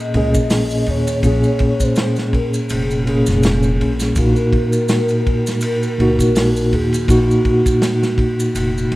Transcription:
Already playing: tine electric piano A#2 A#3 C#4 G#4, soft synth lead D#5
0.14 upright bass C#2, tine electric piano A#2 A#3 C#4 G#4, ride
0.34 upright bass A#1, kick, maracas
0.50 snare, open hi-hat, maracas
0.71 maracas
0.86 upright bass D#2, soft synth lead C#5, ride
1.07 ride, maracas
1.22 upright bass A#1, tine electric piano A#2 A#3 C#4, kick, ride, maracas
1.27 tine electric piano G#4
1.43 maracas
1.59 kick, ride
1.80 soft synth lead C5, kick, maracas
1.96 snare, ride, maracas
2.16 snare, maracas
2.33 soft synth lead A#4, kick, ride
2.54 maracas
2.69 upright bass F1, ride, maracas
2.74 soft synth lead G#4
2.91 maracas
3.05 tine electric piano A#2 A#3 C#4, ride
3.09 tine electric piano G#4
3.26 upright bass F1, snare, maracas
3.43 snare, ride, maracas
3.63 maracas
3.81 upright bass A#1, ride
4.00 snare, maracas
4.15 upright bass A#1, tine electric piano A#2 A#3 D#4 F#4, soft synth lead A#4, kick, ride, maracas
4.36 ride, maracas
4.53 kick, ride
4.73 maracas
4.88 snare, ride, maracas
5.09 ride, maracas
5.27 kick, ride
5.47 snare, maracas
5.61 soft synth lead A#4, ride, maracas
5.83 maracas
5.98 upright bass C#2, tine electric piano A#2 A#3 D#4 F#4, ride
6.19 upright bass A#1, kick, maracas
6.35 snare, open hi-hat, maracas
6.56 maracas
6.72 upright bass D#2, soft synth lead G#4, ride
6.93 ride, maracas
7.07 upright bass A#1, tine electric piano A#2 A#3 D#4 F#4, soft synth lead F#4, kick, ride, maracas
7.31 maracas
7.45 kick, ride
7.66 kick, maracas
7.82 snare, ride, maracas
8.03 snare, maracas
8.18 kick, ride
8.40 maracas
8.55 upright bass F1, ride, maracas
8.78 maracas
8.92 upright bass G#1, ride

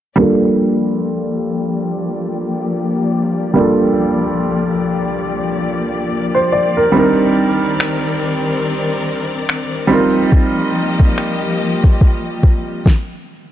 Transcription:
0.16 string section F3 A#3 G4 D5, grand piano G3 A#3 D4
0.20 grand piano F4 A4
3.54 grand piano G3 A#3 D4
3.58 grand piano F4 A4
6.35 grand piano C5
6.52 grand piano D5
6.77 grand piano A#4
6.92 string section D#3 C4 A#4, grand piano G3 C4 D4
6.96 grand piano D#4 A#4
7.80 finger snap
9.49 finger snap
9.87 string section F3 A#3 G4 D#5, grand piano G3 C4 D#4
9.92 grand piano F4 A#4
10.32 kick
11.00 kick
11.18 finger snap
11.84 kick
12.01 kick
12.43 kick
12.86 kick, snare

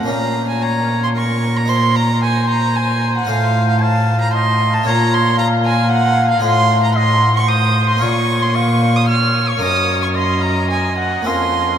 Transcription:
0.03 cello A#2, harpsichord A#3 C#4 F4, violin A#5
0.08 harpsichord A#2
0.49 violin G#5
0.61 oboe C#5, violin A#5
1.03 violin C6
1.15 oboe A#4, violin C#6
1.56 violin A#5
1.65 harpsichord D#4 C5, violin C6
1.95 violin A#5
2.22 oboe C5, violin G#5
2.49 violin A#5
2.76 violin G#5
3.18 violin F#5
3.25 harpsichord A2 F4 C5
3.29 cello A2, violin F5
3.70 violin F5
3.81 oboe F5, violin A5
4.21 violin A#5
4.33 oboe D#5, violin C6
4.74 violin A5
4.83 harpsichord A#2 F4 C#5, cello A#2, oboe C#5
4.88 violin A#5
5.14 violin C6
5.37 oboe F5, violin A#5
5.65 violin G#5
5.91 violin F#5
6.31 violin F5
6.39 cello A2, harpsichord A2 F4 D#5
6.44 violin C6
6.83 violin A#5
6.95 oboe D#5, violin C6
7.36 violin C#6
7.47 oboe C5, violin D#6
7.89 violin C6
7.97 harpsichord A#3 F4 C#5
8.01 cello A#2, harpsichord A#2, oboe C#5, violin C#6
8.42 violin C6
8.54 oboe F5, violin C#6
8.96 violin D#6
9.08 oboe C#5, violin F6
9.49 violin C#6
9.57 harpsichord A#3 D#4 A#4
9.61 harpsichord F#2, cello F#2, violin D#6
10.02 violin C#6
10.15 oboe D#5, violin C6
10.41 violin A#5
10.70 violin G#5
10.98 violin F#5
11.22 harpsichord A#3 C#4 A#4, violin C6
11.27 harpsichord F2, cello F2, oboe F5

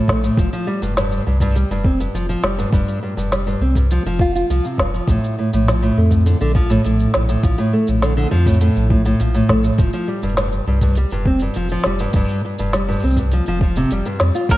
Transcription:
0.08 sub bass A#1, nylon-string guitar A3, kick, snare
0.24 nylon-string guitar A2, shaker
0.37 sub bass F1, nylon-string guitar F3, kick, open hi-hat, shaker
0.53 nylon-string guitar F3, open hi-hat, shaker
0.67 nylon-string guitar G3
0.82 sub bass F1, nylon-string guitar G2, open hi-hat, shaker
0.97 nylon-string guitar G2, snare, open hi-hat, shaker
1.12 shaker
1.27 sub bass C2, nylon-string guitar G2
1.40 nylon-string guitar G2, kick, open hi-hat, shaker
1.56 nylon-string guitar G3, open hi-hat, shaker
1.70 sub bass F1, nylon-string guitar G2, shaker
1.84 nylon-string guitar C4, kick
2.00 nylon-string guitar G2, open hi-hat, shaker
2.14 sub bass F1, nylon-string guitar F3, open hi-hat, shaker
2.29 nylon-string guitar F3, shaker
2.43 sub bass F1, nylon-string guitar G3, snare
2.58 nylon-string guitar G2, shaker
2.73 sub bass F1, nylon-string guitar G2, kick, open hi-hat, shaker
2.88 open hi-hat, shaker
3.03 nylon-string guitar G2
3.17 sub bass F1, nylon-string guitar G2, open hi-hat, shaker
3.32 nylon-string guitar G3, snare, open hi-hat, shaker
3.47 nylon-string guitar G2, shaker
3.60 sub bass C2, nylon-string guitar C4
3.75 nylon-string guitar G2, kick, open hi-hat, shaker
3.91 nylon-string guitar F3, open hi-hat, shaker
4.05 sub bass F1, nylon-string guitar F3, shaker
4.19 nylon-string guitar F4, kick
4.35 nylon-string guitar F4, open hi-hat, shaker
4.50 sub bass C2, nylon-string guitar F3, open hi-hat, shaker
4.65 nylon-string guitar C3, shaker
4.78 sub bass F1, nylon-string guitar G2, kick, snare
4.94 nylon-string guitar F3, open hi-hat, shaker
5.08 sub bass A#1, nylon-string guitar A2, kick, open hi-hat, shaker
5.24 open hi-hat, shaker
5.38 nylon-string guitar A2
5.53 sub bass A#1, nylon-string guitar A2, open hi-hat, shaker
5.68 nylon-string guitar F3, snare, open hi-hat, shaker
5.82 nylon-string guitar A2, shaker
5.97 sub bass F2, nylon-string guitar A3
6.11 nylon-string guitar A2, kick, open hi-hat, shaker
6.26 nylon-string guitar D3, open hi-hat, shaker
6.41 sub bass A#1, nylon-string guitar D3, shaker
6.55 nylon-string guitar F3, kick
6.70 nylon-string guitar A2, open hi-hat, shaker
6.85 sub bass A#1, nylon-string guitar A2, open hi-hat, shaker
7.00 shaker
7.14 sub bass A#1, nylon-string guitar A2, snare
7.29 nylon-string guitar A2, shaker
7.43 sub bass A#1, nylon-string guitar F3, kick, open hi-hat, shaker
7.58 nylon-string guitar A2, open hi-hat, shaker
7.73 nylon-string guitar A3
7.87 sub bass A#1, nylon-string guitar A2, open hi-hat, shaker
8.02 nylon-string guitar D3, snare, open hi-hat, shaker
8.17 nylon-string guitar D3, shaker
8.31 sub bass F2, nylon-string guitar F3
8.46 nylon-string guitar A2, kick, shaker
8.54 open hi-hat
8.61 nylon-string guitar A2, open hi-hat, shaker
8.76 sub bass A#1, shaker
8.90 nylon-string guitar A2, kick
9.05 nylon-string guitar A2, open hi-hat, shaker
9.20 sub bass A#1, nylon-string guitar F3, open hi-hat, shaker
9.34 nylon-string guitar A2, shaker
9.49 sub bass A#1, nylon-string guitar A3, kick, snare
9.64 nylon-string guitar A2, shaker
9.78 sub bass F1, nylon-string guitar F3, kick, open hi-hat, shaker
9.93 nylon-string guitar F3, open hi-hat, shaker
10.08 nylon-string guitar G3
10.22 sub bass F1, nylon-string guitar G2, shaker
10.30 open hi-hat
10.37 nylon-string guitar G2, snare, open hi-hat, shaker
10.52 shaker
10.67 sub bass C2, nylon-string guitar G2
10.81 nylon-string guitar G2, kick, open hi-hat, shaker
10.95 nylon-string guitar G3, open hi-hat, shaker
11.11 sub bass F1, nylon-string guitar G2, shaker
11.26 nylon-string guitar C4, kick
11.40 nylon-string guitar G2, open hi-hat, shaker
11.54 sub bass F1, nylon-string guitar F3, open hi-hat, shaker
11.69 nylon-string guitar F3, shaker
11.84 sub bass F1, nylon-string guitar G3, snare
11.99 nylon-string guitar G2, shaker
12.13 sub bass F1, nylon-string guitar G2, kick, open hi-hat, shaker
12.29 open hi-hat, shaker
12.45 nylon-string guitar G2
12.58 sub bass F1, nylon-string guitar G2, open hi-hat, shaker
12.73 nylon-string guitar G3, snare, open hi-hat, shaker
12.88 nylon-string guitar G2, shaker
12.92 shaker
12.96 shaker
12.99 shaker
13.03 sub bass C2, nylon-string guitar C4, shaker
13.07 shaker
13.10 shaker
13.13 kick, open hi-hat, shaker
13.17 nylon-string guitar G2, shaker
13.32 nylon-string guitar F3, open hi-hat, shaker
13.46 sub bass F1, nylon-string guitar F3, open hi-hat, shaker
13.61 nylon-string guitar F3, kick
13.76 nylon-string guitar C3, open hi-hat, shaker
13.91 sub bass F1, nylon-string guitar G3, open hi-hat, shaker
14.05 nylon-string guitar G2, shaker
14.20 sub bass F2, nylon-string guitar G3, snare
14.35 nylon-string guitar F4, shaker
14.49 sub bass A#1, nylon-string guitar A2, mandolin A#4, ambient pad D5, kick, open hi-hat, shaker

